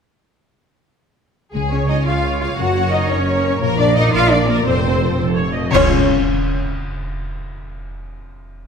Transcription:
1.53 C#2 C#3 G#3 G#4
1.71 C#4 G#4 C#5
1.87 D#4 F4 D#5
2.05 C#2 F4 G#4 F5
2.24 G#4 C#5
2.40 F4 G#4 F5
2.57 F#1 F#2 F#4 A#4 C#5 F#5
2.75 C#4 A#4 C#5
2.91 D#4 F#4 D#5
3.08 F#1 C#4 A#4 C#5
3.27 A#4 C#5
3.44 A#4
3.60 A#1 A#2 A#3 A#4
3.78 D4 A#4 D5
3.95 D#4 F4 D#5
4.12 A#1 F4 A#4 F5
4.30 D4 A#4 D5
4.48 A#3 A#4
4.66 F1 F2 C4 A4 C5
4.84 C4 A4 C5
5.02 F4
5.19 F1 A4
5.37 C5 C#5
5.55 A4 D#5
5.70 C#2 C#3 C#4 F4 C#5, concert bass drum, crash
5.78 G#4 F5

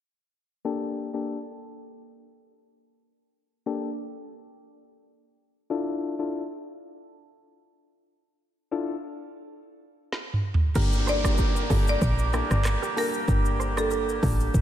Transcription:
0.65 A#3 D4 G4 A4
1.14 A#3 D4 G4 A4
3.66 A#3 D4 G4 A4
5.70 D4 E4 F4 A4
6.19 D4 E4 F4 A4
8.71 D4 E4 F4 A4
10.12 snare
10.33 mid tom
10.54 floor tom
10.75 G1 D3 G3 A#3 D4 G4 A#4, kick, crash, downlifter, shaker
10.93 shaker
11.07 A4 C5 D5, shaker
11.24 A#3 D4 G4 A#4 D5, kick, cross-stick, shaker
11.38 G4 A#4, kick, shaker
11.56 shaker
11.70 G1 A#3 D4 F4 G4 A4, kick, open hi-hat, shaker
11.88 D5, shaker
12.02 A#1, kick, shaker
12.19 shaker
12.33 A#3 D4 E4 G4 A4, cross-stick, shaker
12.51 G1, cross-stick, shaker
12.65 cross-stick, clap, shaker
12.82 G4 A#4, shaker
12.96 A#3 D4 F4 G4 A4 A#4, open hi-hat
13.14 shaker
13.28 G1 A#3 D4 G4 A#4, kick, shaker
13.45 shaker
13.60 A4 C5, shaker
13.77 A#3 D4 G4 A4 A#4 D5, cross-stick, shaker
13.91 G4 A#4, shaker
14.09 shaker
14.22 A1 A#3 D4 F4 G4 A4, kick, open hi-hat, shaker
14.40 shaker
14.54 G1, kick, shaker

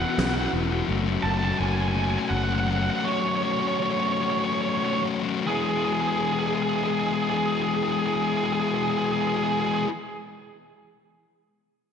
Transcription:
Already playing: E3 B3 E4 F#4
0.02 F#5
0.10 F#5
0.17 B1 F#5, snare, ride
0.25 F#5
0.34 E4 F#4 F#5
0.39 B3 F#5
0.52 E1 E3 B3 E4 F#4
0.70 B3 E4 F#4
0.87 F#1 F#3 A3 C#4 F#4
1.06 A3 C#4 F#4
1.23 F#1 F#3 A3 C#4 A5
1.27 F#4 A5
1.37 F#4 A5
1.42 A3 C#4 A5
1.53 A5
1.58 F#1 F#3 A3 C#4 F#4 G#5
1.66 G#5
1.74 G#5
1.80 G#5
1.88 G#5
1.94 F#3 A3 C#4 F#4 G#5
2.03 G#5
2.10 G#5
2.18 G#5
2.25 G#5
2.29 F#1 F#5
2.37 F#5
2.43 F#5
2.48 A3 C#4 F#4
2.54 F#5
2.60 F#5
2.67 F#3 A3 C#4 F#4 F#5
2.77 F#5
2.83 F#4 F#5
2.88 A3 C#4 F#5
2.99 F#5
3.04 F#3 A3 C#4 F#4 C#5
3.12 C#5
3.20 F#4 C#5
3.24 A3 C#4
3.28 C#5
3.36 C#5
3.42 F#3 A3 C#4 F#4 C#5
3.51 C#5
3.60 C#4 F#4 C#5
3.64 A3 C#5
3.74 C#5
3.80 F#3 A3 C#4 F#4 C#5
3.90 C#5
3.99 C#5
4.06 C#5
4.13 C#5
4.20 F#3 A3 C#4 F#4 C#5
4.30 C#5
4.39 C#5
4.45 C#5
4.53 C#5
4.62 C#5
4.69 C#5
4.77 C#5
4.82 A3 C#4 F#4 C#5
4.93 C#5
5.02 F#3 A3 C#4 F#4
5.23 A3 C#4 F#4
5.46 E3 G#3 B3 E4 G#4
5.54 G#4
5.62 G#4
5.69 G#4
5.78 G#4
5.85 G#4
5.93 G#4
6.01 G#4
6.08 G#4
6.16 G#4
6.23 G#4
6.32 G#4
6.39 G#4
6.46 G#4
6.55 G#4
6.62 G#4
6.69 G#4
6.76 G#4
6.84 G#4
6.92 G#4
6.99 G#4
7.07 G#4
7.14 G#4
7.22 G#4
7.30 G#4
7.37 G#4
7.46 G#4
7.52 G#4
7.62 G#4
7.68 G#4
7.75 G#4
7.83 G#4
7.91 G#4
7.99 G#4
8.06 G#4
8.14 G#4
8.22 G#4
8.28 G#4
8.37 G#4
8.44 G#4
8.53 G#4
8.60 G#4
8.67 G#4
8.75 G#4
8.82 G#4
8.90 G#4
8.98 G#4
9.05 G#4
9.12 G#4
9.21 G#4
9.28 G#4
9.36 G#4
9.43 G#4
9.51 G#4
9.60 G#4
9.66 G#4
9.75 G#4

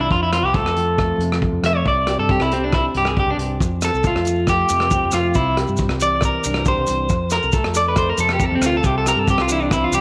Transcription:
Already playing: C4
0.01 E4
0.10 F2 F4, kick
0.23 E4
0.32 C4 F4, cross-stick, closed hi-hat
0.43 C2 G4
0.54 A3 A4, kick
0.64 F2, cross-stick
0.77 F3 C4, closed hi-hat
0.98 A3, kick, cross-stick
1.18 F2 C3 C4, closed hi-hat
1.32 cross-stick
1.42 A4, kick
1.52 F2
1.63 F2 A3 E5, cross-stick, closed hi-hat
1.77 C#5
1.86 C2 C3 D5, kick
2.07 G4, cross-stick, closed hi-hat
2.18 G2 A4
2.29 C4 G4, kick
2.40 C2 E4, cross-stick
2.51 C4 G4, muted nylon-string guitar stroke, closed hi-hat
2.64 D4
2.72 C4 E4, kick, cross-stick
2.94 C2 G2 D4 G4, closed hi-hat
3.05 G#4, cross-stick
3.17 D4 G4, kick
3.26 C2
3.30 D4
3.37 C2 C4, closed hi-hat
3.60 F2, muted nylon-string guitar stroke, kick, maracas
3.82 C4 A4, cross-stick, closed hi-hat, maracas
3.94 C2, maracas
4.04 A3 F4, kick, maracas
4.15 F2, cross-stick
4.25 F3 C4, closed hi-hat, maracas
4.47 A3 G4, kick, cross-stick, maracas
4.68 F2 C3 C4, closed hi-hat, maracas
4.80 cross-stick
4.91 C4, kick, maracas
5.04 F2
5.11 F2 A3 F4, cross-stick, closed hi-hat, maracas
5.34 C2 C3 E4, kick, maracas
5.57 G4, cross-stick, closed hi-hat
5.67 G2, maracas
5.77 C4, kick, maracas
5.89 C2, cross-stick
6.00 E3 G4 D5, closed hi-hat, maracas
6.21 C4, kick, cross-stick, maracas
6.25 A#4
6.43 C2 G2 D4, closed hi-hat, maracas
6.54 cross-stick
6.65 G4 C5, kick, maracas
6.78 C2
6.87 C2 C4, closed hi-hat, maracas
7.09 F2, kick, maracas
7.30 A4 A#4, cross-stick, closed hi-hat, maracas
7.43 C2, maracas
7.52 A3 A4, kick, maracas
7.64 F2, cross-stick
7.74 A4 D5, closed hi-hat, maracas
7.88 B4
7.96 A3 C5, kick, cross-stick, maracas
8.10 A#4
8.18 F2 C3 C4 A4, closed hi-hat, maracas
8.29 cross-stick
8.33 G4
8.40 C4 A4, kick, maracas
8.51 F2
8.55 C4
8.61 D2 A3, cross-stick, closed hi-hat, maracas
8.66 F4
8.77 A4
8.83 C2 C3 G4, kick, maracas
8.98 A4
9.06 G4 A#4, cross-stick, closed hi-hat, maracas
9.16 G2 A4
9.28 C4 G4, kick, maracas
9.37 C2 F4, cross-stick
9.49 E3 D4 E4, closed hi-hat, maracas
9.62 D4
9.71 C4 E4, kick, cross-stick, maracas
9.84 F4
9.92 C2 G2 D4 G4, closed hi-hat, maracas

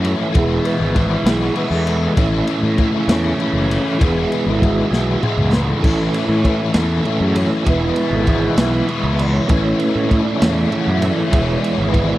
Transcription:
Already playing: F#2 E3 A3 C#4 E4
0.04 A4, ride
0.33 E1 E3 G#3 B3, kick, ride
0.37 G#3 B3 E4 G#4
0.42 B2
0.65 B4, ride
0.80 G#1 G#4
0.94 E3 G#3 B3 E4 B4, kick, ride
1.00 E3
1.25 B1 G#3 B3 E4 G#4, snare, ride
1.29 E3
1.54 E3 G#3 B3 E4, ride
1.59 B4
1.63 B3
1.71 E2
1.75 A4
1.87 A4, ride
2.16 A1 A2 E3 A3 C#4 E4, kick, ride
2.47 ride
2.63 A2
2.77 E3 A3 C#4 E4, kick, ride
2.90 C#3
3.07 E2 A2 E3 A3 C#4 E4, snare, ride
3.37 E3 A3 C#4 E4, ride
3.49 E3
3.53 F#1
3.71 ride
3.99 E1 E3 G#3 B3 E4, kick, ride
4.04 G#4
4.32 ride
4.46 G#1 A4
4.59 E3 G#3 B3 E4 F#4, kick
4.63 ride
4.90 B1 E3 G#3 B3 E4, snare
5.21 E3 G#3 B3 E4 G#4, mid tom
5.37 C#2 A2, mid tom
5.53 B4, snare
5.69 A4
5.81 A1 A2 E3 A3 C#4 E4, kick, crash
5.86 E4
6.00 E3
6.14 ride
6.29 A2
6.33 C#5
6.42 E3 A3 C#4, kick, ride
6.47 E4 B4
6.73 E2 A2 E3 A3 C#4 E4 A4, snare, ride
7.04 E3 A3 C#4 E4, ride
7.21 F#2 G#4
7.36 C#5, ride
7.64 E1 E3 G#3 B3 E4, kick, ride
7.70 E4 B4
7.87 B2
7.96 ride
8.11 G#1 A4
8.26 E3 G#3 B3 E4 G#4, kick, ride
8.51 E3
8.56 B1 E3 G#3 B3 E4 E5, snare, ride
8.60 E4
8.88 E3 G#3 B3 E4, ride
9.04 C#2
9.12 B3
9.19 D5, ride
9.33 C#5
9.47 A1 A2 E3 A3 C#4 E4 B4, kick, ride
9.65 C#5
9.79 B4, ride
9.94 A2 B4
10.09 E3 A3 C#4 E4 C#5, kick, ride
10.23 D5
10.37 C#3 C#4 E4 C#5
10.41 E2 A2 E3 A3, snare, ride
10.52 D5
10.67 E3 E5
10.72 A3 C#4 E4, ride
10.81 F#5
10.88 F#2
10.94 E5
10.99 E3, ride
11.10 D5
11.27 E3 G#3 E5
11.32 E1 G#3 B3 E4, kick, ride
11.41 C#5
11.57 D5
11.64 ride
11.71 C#5
11.78 G#1
11.87 B4
11.92 E3 G#3 B3 E4, kick, ride
12.05 D5

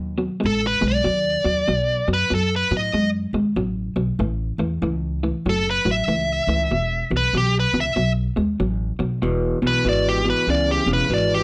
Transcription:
Already playing: D#2 B2 F#3
0.18 B2 F#3
0.40 A1 B2 G#3
0.46 A4
0.67 B4
0.81 B1 B2 G#3
0.88 D5
1.04 D#2 B2 F#3
1.45 D#2 B2 F#3
1.68 B1 B2 F#3
2.08 F#2 B2 F#3
2.13 B4
2.30 F#2 B2 F#3
2.35 A4
2.56 B4
2.71 A2 B2 F#3
2.77 D#5
2.93 F#2 B2 G#3
3.33 D#2 B2 G#3
3.56 A1 B2 F#3
3.96 B1 B2 F#3
4.19 A1 A2 E3
4.58 E2 A2 E3
4.82 C#2 A2 E3
5.23 A2 E3
5.46 F#1 A2 F#3 A4
5.70 B4
5.85 A1 A2 F#3
5.91 E5
6.08 C#2 A2 E3
6.47 C#2 A2 E3
6.71 E1 E2 B2
7.11 B1 E2 B2
7.17 B4
7.33 B1 E2 B2
7.37 G4
7.60 B4
7.73 C#2 E2 B2
7.80 E5
7.96 B1 B2 F#3
8.36 D#2 B2 G#3
8.60 A1 B2 F#3
8.99 B1 B2 F#3
9.22 E1 E2 B2
9.62 B1 E2 B2
9.67 B4
9.85 G#1 E2 B2 D5
10.09 G4
10.24 E2 B2
10.30 B4
10.47 C#2 E2 C#3 D5
10.71 G4
10.86 E1 E2 C#3
10.93 B4
11.10 G#1 E2 B2
11.14 D5
11.34 G4

